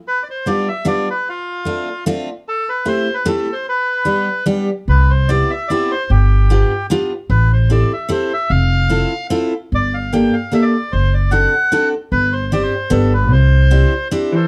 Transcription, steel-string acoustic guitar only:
X:1
M:3/4
L:1/8
Q:"Swing" 1/4=150
K:Gmix
V:1 name="Steel-string acoustic guitar"
z2 [G,B,DF] z [G,B,DF] z | z2 [A,CDF] z [A,CDF] z | z2 [A,CEG] z [A,CEG] z | z2 [G,B,DG] z [G,B,DG] z |
z2 [B,CEG] z [B,CEG] z | z2 [B,DFG] z [B,DFG] z | z2 [CEGA] z [CEGA] z | z2 [CEFA] z [CEFA] z |
z2 [_B,DGA] z [B,DGA] z | z2 [CD^FA] z [CDFA] z | z2 [CDGc] z [B,DGA] z | z2 [CDEG] z [CDEG] z |]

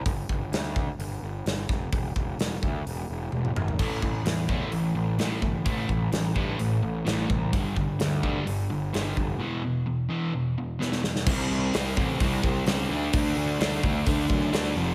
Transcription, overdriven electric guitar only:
X:1
M:4/4
L:1/8
Q:1/4=129
K:Am
V:1 name="Overdriven electric guitar" clef=bass
z8 | z8 | [A,,E,A,] [A,,E,] [A,,E,] [A,,E,A,] [A,,E,] [A,,E,] [A,,E,A,] [A,,E,] | [A,,E,A,] [A,,E,] [A,,E,] [A,,E,A,] [A,,E,] [A,,E,] [A,,E,A,] [A,,E,] |
[G,,D,G,] [G,,D,] [G,,D,] [G,,D,G,] [G,,D,] [G,,D,] [G,,D,G,] [G,,D,] | [E,,B,,E,] [E,,B,,] [E,,B,,] [E,,B,,E,] [E,,B,,] [E,,B,,] [E,,B,,E,] [E,,B,,] | [C,G,C]2 [C,G,C] [C,G,C] [C,G,C]2 [C,G,C] [D,A,D] | [D,A,D]2 [D,A,D] [D,A,D] [D,A,D]2 [D,A,D] [F,,C,F,] |]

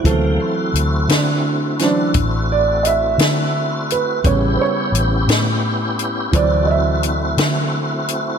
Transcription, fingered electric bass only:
X:1
M:12/8
L:1/8
Q:3/8=57
K:D
V:1 name="Fingered electric bass" clef=bass
D,, z D,, D,3 A,,,3 D,3 | A,,, z A,,, A,,3 D,,3 D,3 |]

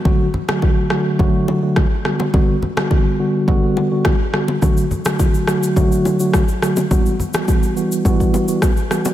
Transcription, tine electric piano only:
X:1
M:4/4
L:1/16
Q:1/4=105
K:D
V:1 name="Tine electric piano" clef=bass
[D,F,A,F]2 z [D,F,A,F]3 [D,F,A,F]2 [D,F,A,F]3 [D,F,A,F] z2 [D,G,B,F]2 | [D,G,B,F]2 z [D,G,B,F]3 [D,G,B,F]2 [D,G,B,F]3 [D,G,B,F] z2 [D,G,B,F]2 | [D,F,A,F]2 z [D,F,A,F]3 [D,F,A,F]2 [D,F,A,F]3 [D,F,A,F] z2 [D,F,A,F]2 | [E,G,B,F]2 z [E,G,B,F]3 [E,G,B,F]2 [E,G,B,F]3 [E,G,B,F] z2 [E,G,B,F]2 |]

